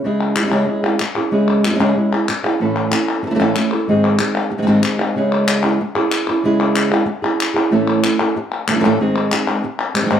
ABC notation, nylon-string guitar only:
X:1
M:4/4
L:1/8
Q:1/4=188
K:C#m
V:1 name="Nylon-string guitar"
[C,G,CEG]2 [CEG] [C,G,CEG] [G,CEG] [CEG] z [CEG] | [C,G,CEG]2 [CEG] [C,G,CEG] [G,CEG] [CEG] z [CEG] | [A,,E,A,CEA]2 [A,CEA]2 z [A,,E,A,CEA] [A,CEA] [A,CEA] | [G,,D,G,^B,DG]2 [G,B,G]2 z [G,,D,G,B,DG] [G,B,DG] [G,B,DG] |
[C,G,CEG]3 [CEG] z [CEG]2 [CEG] | [C,G,CEG]3 [CEG] z [CEG]2 [CEG] | [A,,E,A,CEA]2 [A,CEA] [A,CEA] z2 [A,CEA] [A,,E,A,CEA] | [G,,D,G,^B,DG]2 [G,B,DG] [G,B,DG] z2 [G,B,DG] [G,,D,G,B,DG] |]